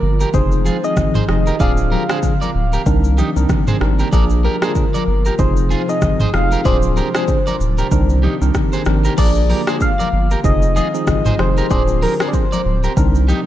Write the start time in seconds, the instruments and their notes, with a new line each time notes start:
Already playing: analog synth pad D3 F3 G#3 A#3 F4, soft synth lead A#4
0.02 sub bass G1
0.20 clean electric guitar G4 A#4, shaker
0.33 sub bass F1, analog synth pad D#3 C4, tine electric piano F3 C4 D#4 G#4, soft synth lead C5, kick, low conga, shaker
0.52 shaker
0.66 clean electric guitar F4 G#4, high conga, shaker
0.83 tine electric piano F3 C4 D#4 G#4, soft synth lead D#5, shaker
0.97 sub bass G#1, kick, cross-stick, high conga, low conga, shaker
1.15 clean electric guitar G#4 C5, mid tom, shaker
1.28 sub bass F1, tine electric piano F3 C4 D#4 G#4, soft synth lead D#5, cross-stick, high conga
1.47 clean electric guitar G4 A#4, shaker
1.60 sub bass D1, analog synth pad D3 C4, tine electric piano F3 C4 D4 G#4, clean electric guitar G#4 D5, soft synth lead F5, kick, shaker
1.77 shaker
1.92 clean electric guitar G4 A#4, high conga
2.09 tine electric piano F3 C4 D4 G#4, clean electric guitar G#4 C5, cross-stick, shaker
2.23 kick, low conga, shaker
2.41 clean electric guitar A#4 D5, high conga, shaker
2.55 sub bass D1
2.73 clean electric guitar G4 A#4, shaker
2.86 sub bass C2, analog synth pad C3 D#3 G3 A#3 D4, tine electric piano D#3 C4 D4 A#4, kick, low conga, shaker
3.04 shaker
3.18 clean electric guitar D#4 G4, high conga, shaker
3.36 sub bass C2, tine electric piano D#3 C4 D4 A#4, shaker
3.49 kick, cross-stick, high conga, low conga, shaker
3.67 clean electric guitar G#4 C5, mid tom, shaker
3.81 sub bass G#1, tine electric piano D#3 C4 D4 A#4, cross-stick, high conga
3.99 clean electric guitar G4 A#4, shaker
4.12 sub bass A#1, analog synth pad D3 F3 G#3 F4, tine electric piano F3 A#3 D4 G#4, clean electric guitar A#4 D5, kick, shaker
4.30 shaker
4.44 clean electric guitar G4 A#4, soft synth lead A#4, high conga
4.62 tine electric piano F3 A#3 D4 G#4, clean electric guitar G#4 C5, cross-stick, shaker
4.75 kick, low conga, shaker
4.94 clean electric guitar A#4 D5, high conga, shaker
5.07 sub bass G1
5.25 clean electric guitar G4 A#4, shaker
5.38 sub bass F1, analog synth pad C3 F3 G#3 D#4, tine electric piano F3 C4 D#4 G#4, soft synth lead C5, kick, low conga, shaker
5.57 shaker
5.70 clean electric guitar F4 G#4, high conga, shaker
5.88 tine electric piano F3 C4 D#4 G#4, soft synth lead D#5, shaker
6.02 sub bass G#1, kick, cross-stick, high conga, low conga, shaker
6.20 clean electric guitar G#4 C5, mid tom, shaker
6.33 sub bass F1, tine electric piano F3 C4 D#4 G#4, soft synth lead F5, cross-stick, high conga
6.52 clean electric guitar G4 A#4, shaker
6.65 sub bass D1, analog synth pad C3 D4, tine electric piano F3 C4 D4 G#4, clean electric guitar G#4 D5, soft synth lead C5, kick, shaker
6.82 shaker
6.97 clean electric guitar G4 A#4, high conga, shaker
7.15 tine electric piano F3 C4 D4 G#4, clean electric guitar G#4 C5, cross-stick, shaker
7.28 kick, low conga, shaker
7.47 clean electric guitar A#4 D5, high conga, shaker
7.60 sub bass D1, shaker
7.78 clean electric guitar G4 A#4, shaker
7.91 sub bass C2, tine electric piano D#3 C4 D4 A#4, analog synth pad D#3 A#3 G4, kick, low conga, shaker
8.09 shaker
8.23 clean electric guitar D#4 G4, high conga
8.41 sub bass C2, tine electric piano D#3 C4 D4 A#4, shaker
8.54 kick, cross-stick, high conga, low conga, shaker
8.73 clean electric guitar G#4 C5, shaker
8.85 sub bass G#1, tine electric piano D#3 C4 D4 A#4, cross-stick, high conga, shaker
9.04 clean electric guitar G4 A#4, shaker
9.17 sub bass A#1, analog synth pad D3 F3 G#3 A#3 F4, tine electric piano F3 A#3 D4 G#4, clean electric guitar A#4 D5, soft synth lead D5, kick, crash, shaker
9.35 shaker
9.50 clean electric guitar G4 A#4, open hi-hat, high conga
9.67 tine electric piano F3 A#3 D4 G#4, clean electric guitar G#4 C5, cross-stick, shaker
9.81 soft synth lead F5, kick, shaker
9.99 clean electric guitar A#4 D5, high conga, shaker
10.13 sub bass G1
10.31 clean electric guitar G4 A#4, shaker
10.44 sub bass F1, analog synth pad D#3 C4 F4, tine electric piano F3 C4 D#4 G#4, soft synth lead D#5, kick, low conga, shaker
10.62 shaker
10.76 clean electric guitar F4 G#4, soft synth lead D#5, high conga, shaker
10.94 tine electric piano F3 C4 D#4 G#4, shaker
11.07 sub bass G#1, kick, cross-stick, high conga, low conga, shaker
11.26 clean electric guitar G#4 C5, mid tom, shaker
11.39 sub bass F1, tine electric piano F3 C4 D#4 G#4, soft synth lead C5, cross-stick, high conga
11.57 clean electric guitar G4 A#4, shaker
11.70 sub bass D1, analog synth pad D3, tine electric piano F3 C4 D4 G#4, clean electric guitar G#4 D5, soft synth lead C5, kick, shaker
11.88 shaker
12.02 clean electric guitar G4 A#4, soft synth lead A#4, open hi-hat, high conga
12.20 tine electric piano F3 C4 D4 G#4, clean electric guitar G#4 C5, cross-stick, shaker
12.28 soft synth lead D5
12.33 soft synth lead C5, kick, shaker
12.52 clean electric guitar A#4 D5, high conga, shaker
12.65 sub bass D1
12.84 clean electric guitar G4 A#4, shaker
12.97 sub bass C2, analog synth pad C3 D#3 G3 A#3 D4, tine electric piano D#3 C4 D4 A#4, kick, low conga, shaker
13.15 shaker
13.28 clean electric guitar D#4 G4, high conga, shaker